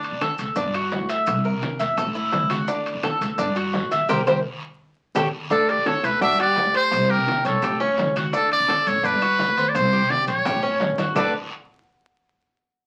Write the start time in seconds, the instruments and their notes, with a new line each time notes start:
Already playing: upright bass D2, cuban tres D4
0.03 high conga, high timbale, maracas
0.12 upright bass D3
0.21 cuban tres A4, high bongo, high conga, high timbale, low timbale, short guiro, claves, maracas
0.38 upright bass D2, high conga, high timbale, short guiro, maracas
0.56 upright bass G1, cuban tres D4, high bongo, high conga, long guiro, maracas
0.65 upright bass G2
0.74 cuban tres F#4, high conga, high timbale, claves, maracas
0.92 high bongo, low bongo, high conga, low timbale, short guiro, maracas
1.00 upright bass D2
1.09 cuban tres E5, high timbale, short guiro, maracas
1.26 upright bass C2, high bongo, high conga, high timbale, long guiro, claves, maracas
1.44 cuban tres A#4, high bongo, high conga, maracas
1.54 upright bass C3
1.61 high bongo, high conga, high timbale, low timbale, short guiro, maracas
1.79 upright bass E2, cuban tres E5, high conga, high timbale, short guiro, maracas
1.97 upright bass A1, cuban tres A4, high bongo, high conga, low conga, high timbale, long guiro, claves, maracas
2.06 upright bass A2
2.15 cuban tres E4, high bongo, high conga, maracas
2.32 high bongo, low bongo, high conga, high timbale, low timbale, short guiro, maracas
2.41 upright bass C#2
2.50 cuban tres F#4, high bongo, high conga, high timbale, short guiro, claves, maracas
2.68 upright bass D2, cuban tres D4, high bongo, high conga, long guiro, maracas
2.86 high conga, high timbale, maracas
2.95 upright bass D3
3.03 cuban tres A4, high bongo, high conga, high timbale, low timbale, short guiro, claves, maracas
3.21 upright bass D2, high conga, high timbale, short guiro, maracas
3.38 upright bass G1, cuban tres D4, high bongo, high conga, long guiro, maracas
3.47 upright bass G2
3.56 cuban tres F#4, high conga, high timbale, claves, maracas
3.73 high bongo, low bongo, high conga, low timbale, short guiro, maracas
3.83 upright bass A1
3.91 cuban tres E5, high conga, high timbale, short guiro, maracas
4.09 upright bass C2, cuban tres G4 A#4 C5, low bongo, high conga, high timbale, long guiro, claves, maracas
4.27 upright bass C2, cuban tres G4 A#4 C5, low bongo, high conga, high timbale, long guiro, claves, maracas
5.15 upright bass A1, cuban tres G4 A4 C#5, low bongo, high conga, high timbale, long guiro, claves, maracas
5.50 upright bass D2, cuban tres D4, nylon-string guitar A4, muted trumpet A4, high bongo, long guiro, maracas
5.69 nylon-string guitar G4, muted trumpet D5, high conga, high timbale, maracas
5.78 upright bass D3
5.85 nylon-string guitar F#4, cuban tres A4, muted trumpet C#5, high bongo, high conga, high timbale, low timbale, short guiro, claves, maracas
6.03 upright bass D2, nylon-string guitar E4, muted trumpet B4, high conga, high timbale, short guiro, maracas
6.21 upright bass G1, cuban tres D4, nylon-string guitar F#4, muted trumpet E5, high bongo, high conga, long guiro, maracas
6.30 upright bass G2
6.39 nylon-string guitar G4, muted trumpet D5, cuban tres F#5, high conga, high timbale, claves, maracas
6.56 high bongo, low bongo, high conga, low timbale, short guiro, maracas
6.65 upright bass D2
6.74 cuban tres C5, muted trumpet C5, high timbale, short guiro, maracas
6.91 upright bass C2, high bongo, high conga, high timbale, long guiro, claves, maracas
7.10 cuban tres G4, muted trumpet A#4, high bongo, maracas
7.18 upright bass C3
7.27 high bongo, high conga, high timbale, low timbale, short guiro, maracas
7.45 upright bass C2, muted trumpet A4, cuban tres C#5, high conga, high timbale, short guiro, maracas
7.62 upright bass A1, cuban tres G4, high bongo, high conga, low conga, high timbale, long guiro, claves, maracas
7.71 upright bass A2
7.80 cuban tres C#4, high bongo, high conga, low conga, maracas
7.98 high bongo, low bongo, high conga, high timbale, low timbale, short guiro, maracas
8.07 upright bass C#2
8.15 cuban tres F#4, high bongo, high conga, high timbale, short guiro, claves, maracas
8.33 upright bass D2, cuban tres D4, muted trumpet A4, high bongo, high conga, long guiro, maracas
8.51 muted trumpet D5, high conga, high timbale, maracas
8.60 upright bass D3
8.68 cuban tres A4, high bongo, high conga, high timbale, low timbale, short guiro, claves, maracas
8.87 upright bass A1, muted trumpet C#5, high conga, high timbale, short guiro, maracas
9.03 upright bass G1, cuban tres D4, muted trumpet B4, high bongo, high conga, long guiro, maracas
9.13 upright bass G2
9.22 cuban tres F#4, high conga, high timbale, claves, maracas
9.39 high bongo, low bongo, high conga, low timbale, short guiro, maracas
9.48 upright bass D2
9.57 cuban tres C5, high conga, high timbale, short guiro, maracas
9.69 muted trumpet D5
9.75 upright bass C2, muted trumpet C5, high bongo, high conga, high timbale, long guiro, claves, maracas
9.93 cuban tres G4, high bongo, maracas
10.01 upright bass C3
10.10 muted trumpet D5, high bongo, high conga, high timbale, low timbale, short guiro, maracas
10.27 upright bass A#1, cuban tres C#5, muted trumpet C#5, high conga, high timbale, short guiro, maracas
10.45 upright bass A1, cuban tres G4, high bongo, high conga, low conga, high timbale, long guiro, claves, maracas
10.55 upright bass A2
10.62 cuban tres C#4, high bongo, high conga, low conga, maracas
10.80 high bongo, low bongo, high conga, low timbale, short guiro, maracas
10.89 upright bass A1
10.98 cuban tres F#4, high bongo, high conga, low timbale, short guiro, claves, maracas
11.15 upright bass D2, cuban tres D4 A4 B4, nylon-string guitar F#4, muted trumpet D5, low bongo, low conga, low timbale, long guiro, claves, maracas